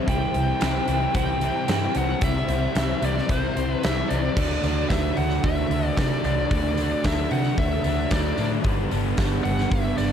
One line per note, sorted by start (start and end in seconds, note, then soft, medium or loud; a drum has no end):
0.07 0.25 C2 medium
0.07 0.33 C3 medium
0.07 0.60 E3 medium
0.07 0.34 G3 loud
0.07 0.34 C4 loud
0.07 0.34 E4 medium
0.07 1.15 G5 loud
0.07 kick loud
0.07 closed hi-hat medium
0.33 0.52 C2 medium
0.33 0.60 C3 medium
0.33 0.61 G3 medium
0.33 0.62 C4 medium
0.33 0.63 E4 medium
0.33 closed hi-hat medium
0.61 0.79 C2 medium
0.61 0.87 C3 medium
0.61 1.68 E3 medium
0.61 0.87 G3 medium
0.61 0.88 C4 medium
0.61 0.87 E4 medium
0.61 snare loud
0.61 closed hi-hat medium
0.61 tambourine medium
0.87 1.05 C2 medium
0.87 1.13 C3 medium
0.87 1.14 G3 medium
0.87 1.14 C4 loud
0.87 1.41 E4 medium
0.87 closed hi-hat medium
1.14 1.50 C2 loud
1.14 1.40 C3 medium
1.14 1.67 E3 loud
1.14 1.41 G3 medium
1.14 1.41 C4 medium
1.14 1.41 E4 loud
1.14 1.97 G5 loud
1.14 kick loud
1.14 closed hi-hat loud
1.41 1.67 C3 medium
1.41 1.68 G3 medium
1.41 1.68 C4 loud
1.41 1.70 E4 medium
1.41 closed hi-hat medium
1.68 1.86 G2 medium
1.68 1.93 C3 loud
1.68 2.21 E3 medium
1.68 1.94 G3 medium
1.68 1.95 C4 loud
1.68 2.23 E4 medium
1.68 snare loud
1.68 closed hi-hat medium
1.68 tambourine medium
1.94 2.13 C2 medium
1.94 2.21 C3 medium
1.94 2.21 G3 medium
1.94 2.22 C4 medium
1.94 2.23 F#5 medium
1.94 closed hi-hat medium
2.21 2.40 C2 medium
2.21 2.48 C3 medium
2.21 2.74 E3 medium
2.21 2.48 G3 medium
2.21 2.49 C4 loud
2.21 2.47 E4 loud
2.21 3.06 E5 loud
2.21 kick loud
2.21 closed hi-hat loud
2.48 2.66 C2 medium
2.48 2.74 C3 medium
2.48 2.75 G3 medium
2.48 2.75 C4 medium
2.48 2.76 E4 medium
2.48 closed hi-hat medium
2.75 2.93 C2 medium
2.75 3.01 C3 medium
2.75 3.29 E3 medium
2.75 3.01 G3 medium
2.75 3.02 C4 medium
2.75 3.00 E4 medium
2.75 snare loud
2.75 closed hi-hat medium
2.75 tambourine medium
3.02 3.20 C2 medium
3.02 3.28 C3 medium
3.02 3.28 G3 loud
3.02 3.29 C4 loud
3.02 3.54 E4 medium
3.02 3.31 D5 medium
3.02 closed hi-hat medium
3.18 snare soft
3.29 3.47 C2 medium
3.29 3.55 C3 medium
3.29 3.81 E3 medium
3.29 3.55 G3 medium
3.29 3.56 C4 medium
3.29 3.55 E4 loud
3.29 3.72 C5 medium
3.29 kick loud
3.29 closed hi-hat loud
3.55 3.74 C2 medium
3.55 3.82 C3 medium
3.55 3.82 G3 medium
3.55 3.83 C4 medium
3.55 3.84 E4 medium
3.55 closed hi-hat medium
3.72 3.86 B4 medium
3.83 4.01 C2 medium
3.83 4.09 C3 medium
3.83 4.35 E3 medium
3.83 4.10 G3 loud
3.83 4.10 C4 medium
3.83 4.36 E4 medium
3.83 4.21 E5 medium
3.83 snare loud
3.83 closed hi-hat medium
3.83 tambourine loud
4.09 4.28 C2 medium
4.09 4.35 C3 medium
4.09 4.36 G3 medium
4.09 4.36 C4 medium
4.09 4.88 D5 medium
4.09 closed hi-hat medium
4.36 4.57 D2 medium
4.36 4.63 D3 medium
4.36 4.65 F#3 loud
4.36 4.63 A3 loud
4.36 4.64 D4 loud
4.36 8.66 F#4 medium
4.36 8.66 A4 medium
4.36 kick loud
4.36 crash loud
4.36 tambourine soft
4.63 4.84 D2 medium
4.63 4.89 D3 medium
4.63 4.90 F#3 medium
4.63 4.89 A3 medium
4.63 4.90 D4 loud
4.63 open hi-hat medium
4.63 tambourine medium
4.89 5.10 D2 loud
4.89 5.16 D3 medium
4.89 5.71 F#3 medium
4.89 5.17 A3 medium
4.89 5.17 D4 medium
4.89 5.17 E5 medium
4.89 kick loud
4.89 snare medium
4.89 open hi-hat medium
4.89 tambourine loud
5.17 5.38 D2 medium
5.17 5.42 D3 loud
5.17 5.43 A3 loud
5.17 5.44 D4 loud
5.17 5.45 F#5 loud
5.17 open hi-hat medium
5.31 tambourine medium
5.43 5.64 D2 medium
5.43 5.69 D3 medium
5.43 5.70 A3 medium
5.43 5.71 D4 medium
5.43 5.97 E5 loud
5.43 kick loud
5.43 open hi-hat medium
5.43 tambourine soft
5.57 tambourine soft
5.70 5.90 D2 medium
5.70 5.96 D3 medium
5.70 5.97 F#3 medium
5.70 5.97 A3 medium
5.70 5.98 D4 medium
5.70 open hi-hat medium
5.97 6.17 C3 medium
5.97 6.23 D3 loud
5.97 6.25 F#3 medium
5.97 6.23 A3 loud
5.97 6.24 D4 loud
5.97 6.24 D5 medium
5.97 kick loud
5.97 snare loud
5.97 open hi-hat medium
5.97 tambourine loud
6.11 tambourine soft
6.24 6.44 C2 medium
6.24 6.49 D3 medium
6.24 6.50 F#3 medium
6.24 6.50 A3 medium
6.24 6.51 D4 medium
6.24 7.05 D5 loud
6.24 open hi-hat medium
6.24 tambourine medium
6.38 tambourine soft
6.51 6.91 D2 medium
6.51 6.76 D3 loud
6.51 6.79 F#3 loud
6.51 6.77 A3 loud
6.51 6.78 D4 loud
6.51 kick loud
6.51 open hi-hat medium
6.51 tambourine soft
6.77 7.03 D3 medium
6.77 7.04 F#3 medium
6.77 7.04 A3 loud
6.77 7.05 D4 loud
6.77 open hi-hat medium
6.77 tambourine medium
7.04 7.24 D2 loud
7.04 7.29 D3 medium
7.04 7.85 F#3 medium
7.04 7.30 A3 medium
7.04 7.31 D4 loud
7.04 7.32 E5 medium
7.04 kick loud
7.04 snare loud
7.04 open hi-hat medium
7.04 tambourine medium
7.30 7.51 C3 loud
7.30 7.56 D3 loud
7.30 7.57 A3 loud
7.30 7.58 D4 loud
7.30 7.59 F#5 medium
7.30 open hi-hat medium
7.45 tambourine medium
7.57 7.78 D2 loud
7.57 7.83 D3 medium
7.57 7.84 A3 loud
7.57 7.85 D4 medium
7.57 8.12 E5 medium
7.57 kick loud
7.57 open hi-hat medium
7.72 tambourine soft
7.84 8.05 D2 medium
7.84 8.09 D3 medium
7.84 8.10 F#3 medium
7.84 8.10 A3 medium
7.84 8.11 D4 medium
7.84 open hi-hat medium
7.84 tambourine medium
8.10 8.31 D2 loud
8.10 8.36 D3 loud
8.10 8.39 F#3 medium
8.10 8.37 A3 loud
8.10 8.38 D4 loud
8.10 8.49 D5 medium
8.10 kick loud
8.10 snare loud
8.10 open hi-hat medium
8.10 tambourine medium
8.25 tambourine soft
8.37 8.58 A2 loud
8.37 8.63 D3 medium
8.37 8.64 F#3 medium
8.37 8.63 A3 medium
8.37 10.12 D4 medium
8.37 open hi-hat medium
8.37 tambourine medium
8.52 tambourine soft
8.64 8.85 G1 loud
8.64 8.91 G2 medium
8.64 8.91 D3 loud
8.64 8.92 G3 loud
8.64 8.91 B3 loud
8.64 8.90 D4 loud
8.64 10.12 B4 medium
8.64 kick loud
8.64 open hi-hat medium
8.64 tambourine soft
8.90 9.12 G1 medium
8.90 9.18 G2 medium
8.90 9.18 D3 medium
8.90 9.19 G3 loud
8.90 9.18 B3 medium
8.90 9.19 D4 medium
8.90 open hi-hat medium
8.90 tambourine medium
9.17 9.38 G1 loud
9.17 9.44 G2 medium
9.17 9.44 D3 medium
9.17 9.45 G3 loud
9.17 9.98 B3 medium
9.17 9.97 D4 medium
9.17 kick loud
9.17 snare loud
9.17 open hi-hat medium
9.17 tambourine loud
9.44 9.65 G1 medium
9.44 9.70 G2 loud
9.44 9.71 D3 loud
9.44 9.71 G3 loud
9.44 9.69 F#5 loud
9.44 open hi-hat medium
9.59 snare soft
9.59 tambourine medium
9.71 9.91 G1 medium
9.71 9.97 G2 medium
9.71 9.98 D3 medium
9.71 9.98 G3 medium
9.71 9.97 E5 loud
9.71 kick loud
9.71 open hi-hat medium
9.85 tambourine soft
9.97 10.12 G1 medium
9.97 10.12 G2 medium
9.97 10.12 D3 medium
9.97 10.12 G3 medium
9.97 10.12 B3 medium
9.97 10.12 D4 medium
9.97 10.12 D5 medium
9.97 open hi-hat medium
9.97 tambourine medium